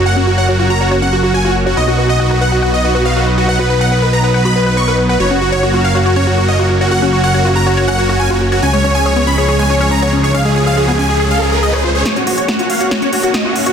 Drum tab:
HH |----------------|----------------|----------------|----------------|
SD |----------------|----------------|----------------|----------------|

HH |----------------|----------------|----------------|xxoxxxoxxxoxx-ox|
SD |----------------|----------------|----------------|o---o---o---o---|